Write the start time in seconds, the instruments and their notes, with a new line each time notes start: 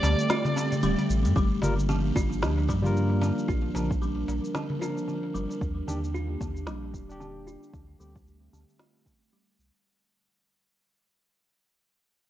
Already playing: ambient pad D3 A3 C4 G4, electric slide guitar D5
0.03 sub bass D2, kalimba D3, darbuka tek, shaker
0.19 open hi-hat, shaker
0.30 kalimba F4, snare, open hi-hat, shaker
0.45 open hi-hat, darbuka ka, darbuka dum
0.56 kalimba D3, darbuka tek, shaker
0.71 open hi-hat, darbuka tek, darbuka dum, shaker
0.83 sub bass D1, kalimba G3, open hi-hat, shaker
0.99 open hi-hat, darbuka ka
1.10 sub bass A1, shaker
1.25 sub bass G2, open hi-hat, darbuka ka, darbuka tek, shaker
1.36 sub bass G1, ambient pad F3 A#3 D4 G4, kalimba G3, kick, shaker
1.62 sub bass G1, tine electric piano G3 F4 A#4, darbuka ka, darbuka tek, darbuka dum, shaker
1.79 shaker
1.89 kalimba D3, shaker
2.16 sub bass G1, kalimba F4, kick, darbuka tek, shaker
2.33 shaker
2.42 sub bass D2, kalimba D3, snare, shaker
2.58 darbuka ka, darbuka tek
2.69 sub bass G2, kalimba G3, kick, darbuka tek, shaker
2.82 tine electric piano G3 F4, darbuka ka, darbuka dum, shaker
2.87 tine electric piano A#4
2.97 shaker
3.10 darbuka ka
3.22 kalimba D3, darbuka tek, shaker
3.39 shaker
3.48 sub bass A#1, kalimba F4, ambient pad A#4, kick, shaker
3.74 sub bass A#1, kalimba D3, tine electric piano F3 D4 A#4, darbuka ka, darbuka tek, darbuka dum, shaker
3.91 kick, shaker
4.02 kalimba G3, shaker
4.28 sub bass A#1, darbuka tek, shaker
4.45 shaker
4.55 kalimba D3, snare, shaker
4.70 darbuka ka, darbuka dum
4.79 tine electric piano F3 D4 A#4, kalimba F4, darbuka tek, shaker
4.98 shaker
5.08 kalimba D3, shaker
5.23 darbuka ka
5.34 sub bass G1, kalimba G3, shaker
5.49 darbuka tek, shaker
5.61 sub bass D#2, ambient pad A#3 D4 G4, kick, shaker
5.87 sub bass D#2, kalimba D3, tine electric piano D#3 D4 G4, shaker
6.04 shaker
6.14 kalimba F4, shaker
6.41 sub bass D#2, kalimba D3, kick, shaker
6.57 shaker
6.67 sub bass A#1, kalimba G3, snare, shaker
6.94 sub bass D#1, kick, shaker
7.09 tine electric piano D4 G4, shaker
7.20 kalimba D3, shaker
7.47 kalimba F4, shaker
7.63 shaker
7.73 sub bass D2, kalimba D3, ambient pad D3 A3 C4, kick, shaker
7.99 sub bass D2, tine electric piano D3 C4 G4, kalimba G3, shaker
8.16 kick, shaker
8.27 shaker
8.53 sub bass D2, kalimba D3, shaker
8.69 shaker
8.79 kalimba F4, snare, shaker
9.06 kalimba D3, kick, shaker
9.23 shaker
9.33 kalimba G3, shaker
9.59 sub bass C2, shaker
9.75 shaker